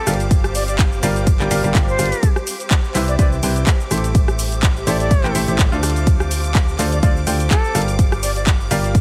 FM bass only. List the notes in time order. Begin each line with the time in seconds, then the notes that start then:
0.07 G1
1.03 G1
1.40 G1
1.51 G1
1.64 G1
1.75 G1
1.99 G1
2.95 C2
3.19 C2
3.43 C2
3.91 A1
4.87 A1
5.24 A1
5.35 A1
5.48 A1
5.72 D2
6.79 D2
7.03 D2
7.27 D2
7.75 G1
8.71 G1